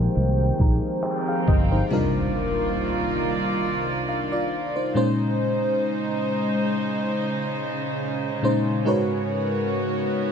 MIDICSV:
0, 0, Header, 1, 7, 480
1, 0, Start_track
1, 0, Tempo, 869565
1, 1051, Time_signature, 4, 2, 24, 8
1, 5696, End_track
2, 0, Start_track
2, 0, Title_t, "FM electric piano"
2, 0, Program_c, 0, 5
2, 0, Control_c, 0, 64, 127
2, 0, Note_on_c, 0, 53, 83
2, 0, Note_on_c, 0, 63, 75
2, 0, Note_on_c, 0, 67, 77
2, 0, Note_on_c, 0, 68, 82
2, 0, Note_on_c, 0, 70, 97
2, 0, Note_on_c, 0, 72, 97
2, 335, Note_on_c, 0, 82, 70
2, 459, Note_off_c, 0, 53, 0
2, 461, Note_off_c, 0, 63, 0
2, 463, Note_off_c, 0, 67, 0
2, 465, Note_off_c, 0, 68, 0
2, 467, Note_off_c, 0, 72, 0
2, 557, Note_off_c, 0, 82, 0
2, 576, Note_on_c, 0, 72, 62
2, 576, Note_on_c, 0, 79, 71
2, 580, Note_on_c, 0, 63, 52
2, 694, Note_off_c, 0, 79, 0
2, 697, Note_off_c, 0, 72, 0
2, 699, Note_off_c, 0, 63, 0
2, 708, Note_on_c, 0, 77, 75
2, 711, Note_on_c, 0, 68, 66
2, 808, Note_off_c, 0, 77, 0
2, 811, Note_off_c, 0, 68, 0
2, 818, Note_on_c, 0, 75, 75
2, 819, Note_off_c, 0, 75, 0
2, 819, Note_on_c, 0, 75, 73
2, 821, Note_on_c, 0, 67, 61
2, 939, Note_off_c, 0, 67, 0
2, 948, Note_on_c, 0, 72, 66
2, 951, Note_on_c, 0, 63, 57
2, 1038, Note_off_c, 0, 75, 0
2, 1050, Note_on_c, 0, 48, 88
2, 1053, Note_off_c, 0, 63, 0
2, 1053, Note_on_c, 0, 55, 82
2, 1057, Note_on_c, 0, 62, 81
2, 1058, Control_c, 0, 64, 0
2, 1059, Note_on_c, 0, 63, 81
2, 1061, Note_off_c, 0, 70, 0
2, 1062, Note_on_c, 0, 65, 78
2, 1066, Note_on_c, 0, 70, 102
2, 1158, Control_c, 0, 64, 127
2, 1173, Note_off_c, 0, 72, 0
2, 1661, Note_off_c, 0, 48, 0
2, 1663, Note_off_c, 0, 55, 0
2, 1665, Note_off_c, 0, 62, 0
2, 1666, Note_off_c, 0, 63, 0
2, 1667, Note_off_c, 0, 65, 0
2, 1669, Note_off_c, 0, 70, 0
2, 2255, Note_on_c, 0, 77, 70
2, 2376, Note_off_c, 0, 77, 0
2, 2386, Note_on_c, 0, 74, 79
2, 2389, Note_on_c, 0, 65, 66
2, 2611, Note_off_c, 0, 74, 0
2, 2613, Note_off_c, 0, 65, 0
2, 2626, Note_on_c, 0, 72, 69
2, 2630, Note_on_c, 0, 63, 63
2, 2729, Note_on_c, 0, 46, 100
2, 2733, Note_on_c, 0, 56, 89
2, 2734, Note_off_c, 0, 63, 0
2, 2737, Note_off_c, 0, 72, 0
2, 2737, Note_on_c, 0, 61, 90
2, 2740, Control_c, 0, 64, 0
2, 2740, Note_on_c, 0, 63, 82
2, 2743, Note_on_c, 0, 72, 107
2, 2836, Control_c, 0, 64, 127
2, 3502, Note_off_c, 0, 46, 0
2, 3504, Note_off_c, 0, 56, 0
2, 3506, Note_off_c, 0, 61, 0
2, 3508, Note_off_c, 0, 63, 0
2, 3509, Note_off_c, 0, 72, 0
2, 4649, Note_on_c, 0, 46, 92
2, 4652, Note_on_c, 0, 56, 80
2, 4656, Note_on_c, 0, 61, 87
2, 4660, Note_on_c, 0, 63, 82
2, 4663, Note_on_c, 0, 72, 102
2, 4807, Note_off_c, 0, 46, 0
2, 4809, Note_off_c, 0, 56, 0
2, 4811, Note_off_c, 0, 61, 0
2, 4813, Note_off_c, 0, 63, 0
2, 4815, Note_off_c, 0, 72, 0
2, 4886, Note_on_c, 0, 56, 88
2, 4890, Note_on_c, 0, 63, 86
2, 4892, Note_on_c, 0, 66, 83
2, 4896, Note_on_c, 0, 70, 83
2, 4899, Control_c, 0, 64, 0
2, 4900, Note_on_c, 0, 71, 84
2, 4902, Note_on_c, 0, 73, 103
2, 5001, Control_c, 0, 64, 127
2, 5499, Note_off_c, 0, 56, 0
2, 5501, Note_off_c, 0, 63, 0
2, 5502, Note_off_c, 0, 66, 0
2, 5504, Note_off_c, 0, 70, 0
2, 5506, Note_off_c, 0, 71, 0
2, 5507, Note_off_c, 0, 73, 0
2, 5696, End_track
3, 0, Start_track
3, 0, Title_t, "String section"
3, 0, Program_c, 1, 48
3, 0, Note_on_c, 1, 51, 76
3, 0, Note_on_c, 1, 56, 75
3, 0, Note_on_c, 1, 58, 75
3, 0, Note_on_c, 1, 79, 90
3, 1032, Note_off_c, 1, 51, 0
3, 1032, Note_off_c, 1, 79, 0
3, 1033, Note_off_c, 1, 56, 0
3, 1033, Note_off_c, 1, 58, 0
3, 1047, Note_on_c, 1, 51, 73
3, 1048, Note_on_c, 1, 36, 84
3, 1048, Note_on_c, 1, 65, 92
3, 1048, Note_on_c, 1, 74, 77
3, 1050, Note_on_c, 1, 58, 73
3, 2712, Note_off_c, 1, 51, 0
3, 2713, Note_off_c, 1, 36, 0
3, 2713, Note_off_c, 1, 65, 0
3, 2713, Note_off_c, 1, 74, 0
3, 2714, Note_off_c, 1, 58, 0
3, 2727, Note_on_c, 1, 56, 78
3, 2727, Note_on_c, 1, 63, 95
3, 2728, Note_on_c, 1, 49, 85
3, 2728, Note_on_c, 1, 72, 78
3, 4867, Note_off_c, 1, 56, 0
3, 4868, Note_off_c, 1, 63, 0
3, 4868, Note_off_c, 1, 72, 0
3, 4886, Note_on_c, 1, 66, 91
3, 4887, Note_on_c, 1, 44, 86
3, 4888, Note_on_c, 1, 59, 76
3, 5696, Note_off_c, 1, 44, 0
3, 5696, Note_off_c, 1, 49, 0
3, 5696, Note_off_c, 1, 59, 0
3, 5696, Note_off_c, 1, 66, 0
3, 5696, End_track
4, 0, Start_track
4, 0, Title_t, "Fingered electric bass"
4, 0, Program_c, 2, 33
4, 91, Note_on_c, 2, 36, 96
4, 276, Note_off_c, 2, 36, 0
4, 329, Note_on_c, 2, 34, 85
4, 430, Note_off_c, 2, 34, 0
4, 817, Note_on_c, 2, 31, 88
4, 999, Note_off_c, 2, 31, 0
4, 5696, End_track
5, 0, Start_track
5, 0, Title_t, "Impact"
5, 0, Program_c, 3, 103
5, 1051, Note_on_c, 3, 60, 91
5, 2971, Note_off_c, 3, 60, 0
5, 5696, End_track
6, 0, Start_track
6, 0, Title_t, "Swell"
6, 0, Program_c, 4, 103
6, 0, Note_on_c, 4, 60, 80
6, 1051, Note_off_c, 4, 60, 0
6, 5696, End_track
7, 0, Start_track
7, 0, Title_t, "Drums"
7, 11, Note_on_c, 9, 42, 78
7, 66, Note_off_c, 9, 42, 0
7, 86, Note_on_c, 9, 42, 70
7, 141, Note_off_c, 9, 42, 0
7, 324, Note_on_c, 9, 42, 64
7, 328, Note_on_c, 9, 36, 92
7, 380, Note_off_c, 9, 42, 0
7, 383, Note_off_c, 9, 36, 0
7, 567, Note_on_c, 9, 42, 60
7, 571, Note_on_c, 9, 39, 102
7, 622, Note_off_c, 9, 42, 0
7, 626, Note_off_c, 9, 39, 0
7, 815, Note_on_c, 9, 36, 95
7, 870, Note_off_c, 9, 36, 0
7, 5696, End_track
0, 0, End_of_file